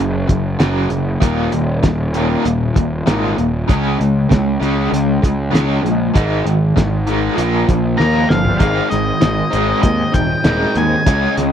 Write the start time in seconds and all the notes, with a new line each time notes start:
Already playing: F#2 C#3
0.00 F#1
0.27 F#1 F#2 C#3, kick, closed hi-hat
0.59 F#1 F#2 C#3 F#3, snare, closed hi-hat
0.89 F#1 F#2 C#3, closed hi-hat
1.20 D#1 D#2 A#2 D#3, kick, closed hi-hat
1.51 D#1 D#2 A#2, closed hi-hat
1.83 D#1 D#2 A#2, kick, snare, closed hi-hat
2.14 D#2 A#2 D#3, closed hi-hat
2.45 D#1 D#2 A#2, closed hi-hat
2.74 D#1 D#2 A#2, kick, closed hi-hat
3.06 G#1 D#2 A#2 D#3, snare, closed hi-hat
3.37 D#1 D#2 A#2, closed hi-hat
3.68 C#2 C#3 G#3 C#4, kick, closed hi-hat
3.99 C#2 C#3 G#3, closed hi-hat
4.30 C#2 C#3 G#3, kick, snare, closed hi-hat
4.60 C#2 C#3 G#3 C#4, closed hi-hat
4.91 C#2 C#3 G#3, closed hi-hat
5.22 C#2 C#3 G#3, kick, closed hi-hat
5.51 C#2 C#3 G#3 C#4
5.55 snare, closed hi-hat
5.82 A#1 C#3 G#3, closed hi-hat
6.14 G#1 G#2 D#3 G#3, kick, closed hi-hat
6.45 G#1 G#2 D#3, closed hi-hat
6.76 G#1 G#2 D#3, kick, snare, closed hi-hat
7.07 G#2 D#3 G#3, closed hi-hat
7.36 A#1 A#2 F3 A#3, closed hi-hat
7.67 A#1 A#2 F3, kick, closed hi-hat
7.97 D#2 A#2 F3 A#3 A#5, snare
8.28 G1 A#2 F3 A3 B3 F5, snare
8.34 C4 D4
8.39 E4 F4
8.45 G4 A4, floor tom
8.51 B4 C5
8.56 G#2 D#3 G#3 C4 G#4 D5 D#5 F5
8.60 G#1, kick, closed hi-hat
8.90 G#1 G#2 D#3 D#5, snare, closed hi-hat
9.21 G#1 G#2 D#3, snare, closed hi-hat
9.51 G#1 G#2 D#3 G#3, closed hi-hat
9.82 D#2 G#2 D#3 D#5, kick, closed hi-hat
10.13 D#1 G#2 D#3 G5, kick, closed hi-hat
10.44 D#1 G#2 D#3 G#3, snare, closed hi-hat
10.75 D#2 G#2 D#3 G#5, closed hi-hat
11.05 C#2 C#3 G#3 C#4 G#4 D#5, kick, closed hi-hat
11.37 C#2 C#3 G#3, snare, closed hi-hat